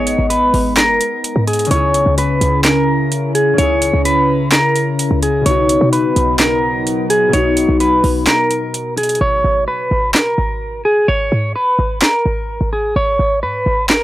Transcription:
Already playing: 808-style bass G#1, ambient pad G#3 B3 D#4, harp G#3 B3 G#4 D#5, clean electric guitar C#5
0.07 closed hi-hat
0.19 808-style bass G#1
0.30 clean electric guitar B4, closed hi-hat
0.54 808-style bass G#1, open hi-hat
0.77 clean electric guitar A#4, snare, clap, closed hi-hat
0.89 808-style bass F#1
1.01 closed hi-hat
1.24 closed hi-hat
1.36 808-style bass G#2
1.47 clean electric guitar G#4, closed hi-hat
1.53 closed hi-hat
1.59 closed hi-hat
1.65 harp C#3, closed hi-hat
1.70 808-style bass C#2, ambient pad C#3 C#4 E4 G#4, harp C#4 E4, clean electric guitar C#5, closed hi-hat
1.76 harp G#4
1.94 closed hi-hat
2.06 808-style bass C#2
2.18 clean electric guitar B4, closed hi-hat
2.41 808-style bass C#2, closed hi-hat
2.64 clean electric guitar A#4, snare, clap, closed hi-hat
3.12 closed hi-hat
3.35 clean electric guitar G#4, closed hi-hat
3.54 harp C#3 C#4
3.58 808-style bass C#2, harp E4, clean electric guitar C#5, ambient pad A#5, closed hi-hat
3.63 harp G#4
3.82 closed hi-hat
3.94 808-style bass C#2
4.05 clean electric guitar B4, closed hi-hat
4.52 clean electric guitar A#4, snare, clap, closed hi-hat
4.76 closed hi-hat
4.99 closed hi-hat
5.11 808-style bass C#2
5.23 clean electric guitar G#4, closed hi-hat
5.41 harp B2 B3
5.46 808-style bass B1, ambient pad F#3 B3 D#4, harp D#4, clean electric guitar C#5, closed hi-hat
5.50 harp F#4
5.69 closed hi-hat
5.81 808-style bass B2
5.93 clean electric guitar B4, closed hi-hat
6.16 808-style bass B1, closed hi-hat
6.40 clean electric guitar A#4, snare, clap, closed hi-hat
6.87 closed hi-hat
7.10 clean electric guitar G#4, closed hi-hat
7.28 harp B2 B3
7.33 808-style bass B1, harp D#4, clean electric guitar C#5, closed hi-hat
7.38 harp F#4
7.57 closed hi-hat
7.69 808-style bass B1
7.80 clean electric guitar B4, closed hi-hat
8.04 808-style bass B1, open hi-hat
8.27 clean electric guitar A#4, snare, clap, closed hi-hat
8.51 closed hi-hat
8.74 closed hi-hat
8.97 clean electric guitar G#4, closed hi-hat
9.03 closed hi-hat
9.09 closed hi-hat
9.15 closed hi-hat
9.21 808-style bass G#1, clean electric guitar C#5
9.44 808-style bass G#1
9.68 clean electric guitar B4
9.91 808-style bass G#1
10.14 clean electric guitar A#4, snare, clap
10.38 808-style bass G#1
10.85 clean electric guitar G#4
11.08 808-style bass G#1, clean electric guitar C#5
11.32 808-style bass G#2
11.56 clean electric guitar B4
11.79 808-style bass G#1
12.02 clean electric guitar A#4, snare, clap
12.26 808-style bass G#1
12.61 808-style bass G#1
12.73 clean electric guitar G#4
12.96 808-style bass G#1, clean electric guitar C#5
13.19 808-style bass G#1
13.43 808-style bass G#2, clean electric guitar B4
13.66 808-style bass G#1
13.90 clean electric guitar A#4, snare, clap

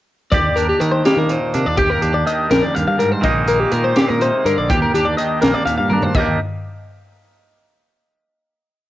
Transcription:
0.32 picked electric bass D#2, clean electric guitar D#2 G4 D5, kick, closed hi-hat
0.56 clean electric guitar D4 A#4, closed hi-hat
0.69 clean electric guitar G4
0.80 clean electric guitar D#3 A#4, picked electric bass D#3, closed hi-hat
0.92 clean electric guitar C5
1.05 clean electric guitar A#3 G4, snare, closed hi-hat
1.17 picked electric bass D#3, clean electric guitar A#4
1.29 clean electric guitar A#2 C5, closed hi-hat
1.54 picked electric bass C3, clean electric guitar D4 A#4, closed hi-hat
1.66 picked electric bass D#2, clean electric guitar D5
1.77 clean electric guitar D#2 G4, kick, closed hi-hat
1.90 clean electric guitar A#4
2.02 picked electric bass D#2, clean electric guitar D4 G4, closed hi-hat
2.14 clean electric guitar D5
2.26 clean electric guitar D#3 D#5, closed hi-hat
2.50 picked electric bass A#1, clean electric guitar F2 A#4, snare, closed hi-hat
2.63 clean electric guitar D5
2.74 picked electric bass D#2, clean electric guitar G2 F5, closed hi-hat
2.88 picked electric bass G2, clean electric guitar F5
2.98 clean electric guitar G#2 A#4, closed hi-hat
3.12 clean electric guitar C5
3.21 picked electric bass A#1, clean electric guitar A#2 D#3 G#3 A#3 D#4 D#5, kick, closed hi-hat
3.48 clean electric guitar A#3 A#4, closed hi-hat
3.60 clean electric guitar G4
3.72 picked electric bass A#2, clean electric guitar D#3 A#4, closed hi-hat
3.84 clean electric guitar C5
3.96 clean electric guitar A#2 G4, snare, closed hi-hat
4.09 picked electric bass A#2, clean electric guitar A#4
4.21 clean electric guitar C3 C5, closed hi-hat
4.45 picked electric bass G2, clean electric guitar D3 A#4, closed hi-hat
4.58 picked electric bass A#1, clean electric guitar D5
4.69 clean electric guitar D#2 G4, picked electric bass D#2, kick, closed hi-hat
4.82 clean electric guitar A#4
4.94 picked electric bass D#2, clean electric guitar D4 G4, closed hi-hat
5.05 clean electric guitar D5
5.17 clean electric guitar D#3 D#5, closed hi-hat
5.42 picked electric bass A#1, clean electric guitar A#3 A#4, snare, closed hi-hat
5.54 clean electric guitar D5
5.66 picked electric bass D#2, clean electric guitar A#2 F5, closed hi-hat
5.78 picked electric bass G2, clean electric guitar F5
5.90 clean electric guitar D4 A#4, high tom
6.02 clean electric guitar C5, floor tom
6.14 picked electric bass D#2, clean electric guitar D#2 D#3 A#3 D#5, kick, china
6.19 clean electric guitar D4 G4

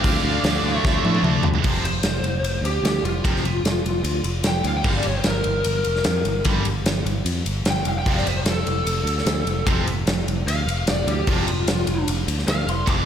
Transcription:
Already playing: distorted electric guitar D3 A3 D4, lead electric guitar D5 F5
0.03 picked electric bass D2, kick, open hi-hat
0.23 picked electric bass D2
0.44 picked electric bass D2, snare, open hi-hat
0.63 picked electric bass D2, overdriven electric guitar A3 D4
0.68 overdriven electric guitar D3
0.73 lead electric guitar C#5 E5
0.84 picked electric bass D2, distorted electric guitar D3 A3, kick, snare
0.89 distorted electric guitar D4
1.04 picked electric bass A2, distorted electric guitar D3 A3 D4, high tom
1.15 high tom
1.22 picked electric bass D2, mid tom
1.43 picked electric bass D2, floor tom
1.54 floor tom
1.64 picked electric bass F1, distorted electric guitar F2 C3 F3, kick, crash
1.82 picked electric bass F1, lead electric guitar C5, ride
2.03 picked electric bass F1, snare, ride
2.22 picked electric bass F1, ride
2.42 picked electric bass F1, ride
2.61 picked electric bass D2, ride
2.66 lead electric guitar G4
2.82 picked electric bass D2, lead electric guitar G4, snare, ride
3.03 picked electric bass F1, lead electric guitar F4, ride
3.24 picked electric bass F1, distorted electric guitar F2 C3 F3, kick, ride
3.36 snare
3.44 picked electric bass F1, ride
3.64 picked electric bass F1, snare, ride
3.84 picked electric bass F1, ride
4.04 picked electric bass D2, ride
4.24 picked electric bass F1, ride
4.43 picked electric bass F1, snare, ride
4.47 lead electric guitar G5
4.64 picked electric bass D2, lead electric guitar F5, ride
4.76 lead electric guitar G5
4.84 picked electric bass G1, distorted electric guitar G2 D3 G3, lead electric guitar F5, kick, crash
4.97 lead electric guitar D5
5.03 picked electric bass G1, ride
5.07 lead electric guitar C#5
5.17 lead electric guitar C5
5.24 picked electric bass G1, lead electric guitar A#4, snare, ride
5.44 picked electric bass G1, ride
5.64 picked electric bass G1, ride
5.84 picked electric bass F1, ride
5.96 snare
6.04 picked electric bass F2, snare, ride
6.25 picked electric bass G1, ride
6.44 picked electric bass G1, distorted electric guitar G2 D3 G3, kick, ride
6.65 picked electric bass G1, ride
6.84 picked electric bass G1, snare, ride
7.04 picked electric bass G1, ride
7.25 picked electric bass F2, ride
7.46 picked electric bass G1, ride
7.64 picked electric bass G1, snare, ride
7.70 lead electric guitar G5
7.85 picked electric bass F1, lead electric guitar F5, ride
7.99 lead electric guitar G5
8.05 picked electric bass F1, distorted electric guitar F2 C3, lead electric guitar F5, kick, crash
8.09 distorted electric guitar F3
8.16 lead electric guitar D5, snare
8.26 picked electric bass F1, lead electric guitar C5, ride
8.39 lead electric guitar C5
8.45 picked electric bass F1, snare, ride
8.51 lead electric guitar A4
8.67 picked electric bass F1, ride
8.85 picked electric bass F1, ride
9.04 picked electric bass D2, ride
9.18 snare
9.25 picked electric bass D2, snare, ride
9.45 picked electric bass F1, ride
9.66 picked electric bass F1, distorted electric guitar F2 C3 F3, kick, ride
9.86 picked electric bass F1, ride
10.06 picked electric bass F1, snare, ride
10.27 picked electric bass F1, ride
10.46 picked electric bass D2, lead electric guitar F5, ride
10.66 picked electric bass F1, ride
10.86 picked electric bass F1, lead electric guitar D5, snare, ride
11.06 picked electric bass D2, lead electric guitar G4, ride
11.27 picked electric bass F1, distorted electric guitar F2 C3 F3, lead electric guitar F4, kick, crash
11.47 picked electric bass F1, ride
11.66 picked electric bass F1, snare, ride
11.87 picked electric bass F1, ride
12.08 picked electric bass F1, ride
12.27 picked electric bass D2, ride
12.39 snare
12.47 picked electric bass D2, lead electric guitar F5, snare, ride
12.67 picked electric bass F1, lead electric guitar C6, ride
12.86 picked electric bass F1, distorted electric guitar F2 C3 F3, lead electric guitar D6, kick, ride

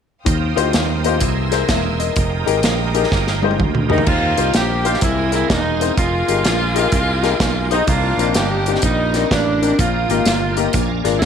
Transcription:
0.24 fingered electric bass D#2, grand piano D#3, tonewheel organ F3 A#3 C4 D#4 G4, string section F5 G5 C6 D#6, kick, closed hi-hat
0.56 fingered electric bass D2, grand piano D#4 F4 G4 C5, closed hi-hat
0.73 fingered electric bass D#2, snare, closed hi-hat
1.04 grand piano D#4 F4 G4 C5, closed hi-hat
1.19 fingered electric bass C2, grand piano C3, tonewheel organ E3 G#4, string section A#5 E6, kick, closed hi-hat
1.51 grand piano E4 G#4 A#4 C5, snare, closed hi-hat
1.69 fingered electric bass E1, grand piano A#4 E5, kick, snare, closed hi-hat
1.99 grand piano A#4 D#5, closed hi-hat
2.15 fingered electric bass F1, tonewheel organ F3 G#3 A#3 G4, string section G5 A#5 D#6, kick, closed hi-hat
2.46 fingered electric bass G#1, grand piano D#4 G4 G#4 A#4, closed hi-hat
2.63 fingered electric bass A#1, snare, closed hi-hat
2.95 grand piano D#4 G4 G#4 A#4, closed hi-hat
3.04 snare
3.12 fingered electric bass G1, kick, snare
3.27 snare
3.42 grand piano D#4 G4 G#4 C5, high tom
3.51 high tom
3.59 fingered electric bass D2, kick, mid tom
3.75 mid tom
3.89 grand piano D#4 G4 G#4 A#4, saxophone section D#4, electric slide guitar D#4, floor tom
3.98 floor tom
4.06 fingered electric bass D#2, grand piano D#3, saxophone section A#3 C4 F4, electric slide guitar F4, tonewheel organ G4 D#5 F5 C6, kick, crash
4.37 fingered electric bass C2, grand piano D#4 F4 G4 C5, closed hi-hat
4.54 fingered electric bass A#1, saxophone section A#3 C4 G4, electric slide guitar G4, snare, closed hi-hat
4.84 grand piano D#4 F4 G4 C5, electric slide guitar F4, closed hi-hat
4.94 snare
5.01 fingered electric bass C2, grand piano C3, saxophone section G#3 A#3 E4, electric slide guitar E4, tonewheel organ A#4 D#5 G#5, kick, closed hi-hat
5.32 grand piano C4 E4 G#4 A#4, electric slide guitar E4, closed hi-hat
5.50 fingered electric bass E1, saxophone section G#3 A#3 D#4, electric slide guitar D#4, kick, snare, closed hi-hat
5.80 grand piano C4 E4 G#4 C5, closed hi-hat
5.97 fingered electric bass F1, saxophone section G#3 A#3 F4, electric slide guitar F4, tonewheel organ D#5 G5, kick, closed hi-hat
6.28 fingered electric bass G1, grand piano D#4 G4 G#4 A#4, closed hi-hat
6.45 fingered electric bass A#1, snare, closed hi-hat
6.75 grand piano D#4 G4 G#4 A#4, closed hi-hat
6.92 fingered electric bass C2, kick, closed hi-hat
7.23 grand piano D#4 G4 G#4 A#4, snare, closed hi-hat
7.40 fingered electric bass B1, kick, snare, closed hi-hat
7.71 grand piano D#4 G4 G#4 C5, saxophone section D#4, electric slide guitar D#4, closed hi-hat
7.87 fingered electric bass C2, grand piano C3, saxophone section A#3 D4 F4, electric slide guitar F4, tonewheel organ C5 D5 A#5, kick, closed hi-hat
8.17 fingered electric bass A#1, grand piano C4 D4 D#4 A#4, closed hi-hat
8.34 fingered electric bass G1, saxophone section A#3 D#4 G4, electric slide guitar G4, snare, closed hi-hat
8.66 grand piano C4 D4 D#4 G4, closed hi-hat
8.75 snare
8.82 fingered electric bass A#1, saxophone section G3 A#3 D#4, electric slide guitar D#4, kick, closed hi-hat
9.14 grand piano C4 D4 D#4 A#4, snare, closed hi-hat
9.31 fingered electric bass A1, saxophone section G3 A#3 D4, electric slide guitar D4, kick, snare, closed hi-hat
9.62 grand piano C4 D4 D#4 A#4, closed hi-hat
9.78 fingered electric bass A#1, grand piano A#2, saxophone section A#3 F4, electric slide guitar F4, tonewheel organ A#4 D#5 G5, kick, closed hi-hat
10.09 fingered electric bass G#1, grand piano A#3 D#4 G4 A#4, closed hi-hat
10.26 fingered electric bass G1, snare, closed hi-hat
10.57 grand piano A#3 D#4 G4 A#4, closed hi-hat
10.73 fingered electric bass A#1, grand piano A#2, tonewheel organ D5 F5 G#5, kick, closed hi-hat
11.04 fingered electric bass G#1, grand piano D4 F4 G#4 A#4, snare, closed hi-hat
11.19 fingered electric bass D2, electric slide guitar E4, kick, snare, closed hi-hat

